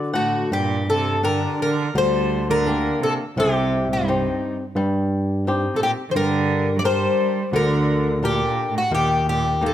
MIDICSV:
0, 0, Header, 1, 5, 480
1, 0, Start_track
1, 0, Key_signature, -2, "minor"
1, 0, Tempo, 731707
1, 339, Time_signature, 4, 2, 24, 8
1, 814, Tempo, 709220
1, 2254, Tempo, 694444
1, 6657, End_track
2, 0, Start_track
2, 0, Title_t, "Twelve-string acoustic guitar"
2, 0, Program_c, 0, 25
2, 101, Note_on_c, 0, 66, 71
2, 347, Note_off_c, 0, 66, 0
2, 349, Note_on_c, 0, 67, 83
2, 588, Note_on_c, 0, 69, 82
2, 590, Note_off_c, 0, 67, 0
2, 814, Note_off_c, 0, 69, 0
2, 817, Note_on_c, 0, 70, 83
2, 1065, Note_off_c, 0, 70, 0
2, 1072, Note_on_c, 0, 70, 81
2, 1311, Note_off_c, 0, 70, 0
2, 1313, Note_on_c, 0, 72, 93
2, 1668, Note_off_c, 0, 72, 0
2, 1671, Note_on_c, 0, 70, 92
2, 2025, Note_off_c, 0, 70, 0
2, 2027, Note_on_c, 0, 69, 82
2, 2090, Note_off_c, 0, 69, 0
2, 2274, Note_on_c, 0, 67, 81
2, 2601, Note_off_c, 0, 67, 0
2, 2642, Note_on_c, 0, 63, 75
2, 3077, Note_off_c, 0, 63, 0
2, 3909, Note_on_c, 0, 69, 65
2, 3947, Note_off_c, 0, 69, 0
2, 3956, Note_on_c, 0, 67, 83
2, 4005, Note_off_c, 0, 67, 0
2, 4151, Note_on_c, 0, 72, 70
2, 4183, Note_off_c, 0, 72, 0
2, 4186, Note_on_c, 0, 70, 91
2, 4617, Note_off_c, 0, 70, 0
2, 4620, Note_on_c, 0, 74, 77
2, 4659, Note_off_c, 0, 74, 0
2, 4662, Note_on_c, 0, 72, 88
2, 5103, Note_off_c, 0, 72, 0
2, 5149, Note_on_c, 0, 70, 90
2, 5585, Note_off_c, 0, 70, 0
2, 5628, Note_on_c, 0, 67, 86
2, 5985, Note_off_c, 0, 67, 0
2, 5993, Note_on_c, 0, 66, 74
2, 6101, Note_off_c, 0, 66, 0
2, 6108, Note_on_c, 0, 67, 80
2, 6340, Note_off_c, 0, 67, 0
2, 6348, Note_on_c, 0, 67, 74
2, 6589, Note_off_c, 0, 67, 0
2, 6605, Note_on_c, 0, 69, 76
2, 6657, Note_off_c, 0, 69, 0
2, 6657, End_track
3, 0, Start_track
3, 0, Title_t, "Nylon-string guitar"
3, 0, Program_c, 1, 24
3, 0, Note_on_c, 1, 50, 64
3, 0, Note_on_c, 1, 66, 48
3, 0, Note_on_c, 1, 74, 63
3, 80, Note_off_c, 1, 74, 0
3, 88, Note_on_c, 1, 78, 62
3, 92, Note_off_c, 1, 66, 0
3, 92, Note_on_c, 1, 57, 46
3, 312, Note_off_c, 1, 50, 0
3, 318, Note_off_c, 1, 78, 0
3, 330, Note_off_c, 1, 57, 0
3, 341, Note_on_c, 1, 55, 62
3, 801, Note_off_c, 1, 55, 0
3, 809, Note_on_c, 1, 62, 45
3, 810, Note_on_c, 1, 67, 46
3, 813, Note_on_c, 1, 70, 56
3, 1196, Note_off_c, 1, 67, 0
3, 1198, Note_off_c, 1, 62, 0
3, 1199, Note_off_c, 1, 70, 0
3, 1297, Note_on_c, 1, 50, 68
3, 1761, Note_off_c, 1, 50, 0
3, 1775, Note_on_c, 1, 62, 49
3, 1781, Note_on_c, 1, 58, 54
3, 1782, Note_on_c, 1, 67, 43
3, 2158, Note_off_c, 1, 62, 0
3, 2161, Note_off_c, 1, 67, 0
3, 2162, Note_off_c, 1, 58, 0
3, 2258, Note_on_c, 1, 48, 68
3, 2721, Note_off_c, 1, 48, 0
3, 2747, Note_on_c, 1, 60, 51
3, 2751, Note_on_c, 1, 67, 56
3, 2752, Note_on_c, 1, 63, 45
3, 3125, Note_off_c, 1, 60, 0
3, 3126, Note_off_c, 1, 67, 0
3, 3127, Note_off_c, 1, 63, 0
3, 3218, Note_on_c, 1, 55, 69
3, 3685, Note_off_c, 1, 55, 0
3, 3707, Note_on_c, 1, 60, 49
3, 3710, Note_on_c, 1, 63, 47
3, 3715, Note_on_c, 1, 67, 56
3, 4087, Note_off_c, 1, 60, 0
3, 4089, Note_off_c, 1, 63, 0
3, 4091, Note_off_c, 1, 67, 0
3, 4183, Note_on_c, 1, 55, 66
3, 4642, Note_off_c, 1, 55, 0
3, 4655, Note_on_c, 1, 62, 51
3, 4658, Note_on_c, 1, 67, 48
3, 4661, Note_on_c, 1, 70, 58
3, 5033, Note_off_c, 1, 62, 0
3, 5035, Note_off_c, 1, 67, 0
3, 5037, Note_off_c, 1, 70, 0
3, 5133, Note_on_c, 1, 50, 69
3, 5590, Note_off_c, 1, 50, 0
3, 5611, Note_on_c, 1, 62, 49
3, 5616, Note_on_c, 1, 67, 47
3, 5620, Note_on_c, 1, 70, 54
3, 5993, Note_off_c, 1, 62, 0
3, 5994, Note_off_c, 1, 67, 0
3, 5997, Note_off_c, 1, 70, 0
3, 6087, Note_on_c, 1, 51, 63
3, 6558, Note_off_c, 1, 51, 0
3, 6570, Note_on_c, 1, 63, 49
3, 6576, Note_on_c, 1, 67, 43
3, 6579, Note_on_c, 1, 58, 52
3, 6657, Note_off_c, 1, 58, 0
3, 6657, Note_off_c, 1, 63, 0
3, 6657, Note_off_c, 1, 67, 0
3, 6657, End_track
4, 0, Start_track
4, 0, Title_t, "Cello"
4, 0, Program_c, 2, 42
4, 98, Note_on_c, 2, 45, 65
4, 323, Note_off_c, 2, 45, 0
4, 345, Note_on_c, 2, 46, 75
4, 564, Note_off_c, 2, 46, 0
4, 588, Note_on_c, 2, 48, 73
4, 803, Note_off_c, 2, 48, 0
4, 817, Note_on_c, 2, 50, 73
4, 1041, Note_off_c, 2, 50, 0
4, 1070, Note_on_c, 2, 50, 76
4, 1287, Note_off_c, 2, 50, 0
4, 1304, Note_on_c, 2, 55, 81
4, 1635, Note_off_c, 2, 55, 0
4, 1663, Note_on_c, 2, 50, 81
4, 1994, Note_off_c, 2, 50, 0
4, 2013, Note_on_c, 2, 48, 76
4, 2121, Note_off_c, 2, 48, 0
4, 2257, Note_on_c, 2, 48, 74
4, 2591, Note_off_c, 2, 48, 0
4, 2613, Note_on_c, 2, 43, 65
4, 3062, Note_off_c, 2, 43, 0
4, 3892, Note_on_c, 2, 48, 52
4, 3927, Note_off_c, 2, 48, 0
4, 3931, Note_on_c, 2, 46, 71
4, 4019, Note_off_c, 2, 46, 0
4, 4135, Note_on_c, 2, 51, 64
4, 4167, Note_off_c, 2, 51, 0
4, 4171, Note_on_c, 2, 50, 88
4, 4576, Note_off_c, 2, 50, 0
4, 4598, Note_on_c, 2, 54, 59
4, 4646, Note_off_c, 2, 54, 0
4, 4661, Note_on_c, 2, 55, 87
4, 5103, Note_off_c, 2, 55, 0
4, 5133, Note_on_c, 2, 50, 82
4, 5577, Note_off_c, 2, 50, 0
4, 5607, Note_on_c, 2, 46, 76
4, 5939, Note_off_c, 2, 46, 0
4, 5955, Note_on_c, 2, 45, 65
4, 6070, Note_off_c, 2, 45, 0
4, 6102, Note_on_c, 2, 46, 66
4, 6318, Note_off_c, 2, 46, 0
4, 6328, Note_on_c, 2, 46, 68
4, 6555, Note_off_c, 2, 46, 0
4, 6573, Note_on_c, 2, 51, 63
4, 6657, Note_off_c, 2, 51, 0
4, 6657, End_track
5, 0, Start_track
5, 0, Title_t, "Tine electric piano"
5, 0, Program_c, 3, 4
5, 337, Note_on_c, 3, 43, 80
5, 954, Note_off_c, 3, 43, 0
5, 1290, Note_on_c, 3, 38, 91
5, 1915, Note_off_c, 3, 38, 0
5, 2250, Note_on_c, 3, 36, 92
5, 2874, Note_off_c, 3, 36, 0
5, 3211, Note_on_c, 3, 43, 100
5, 3838, Note_off_c, 3, 43, 0
5, 4179, Note_on_c, 3, 43, 91
5, 4796, Note_off_c, 3, 43, 0
5, 5126, Note_on_c, 3, 38, 101
5, 5747, Note_off_c, 3, 38, 0
5, 6083, Note_on_c, 3, 39, 84
5, 6657, Note_off_c, 3, 39, 0
5, 6657, End_track
0, 0, End_of_file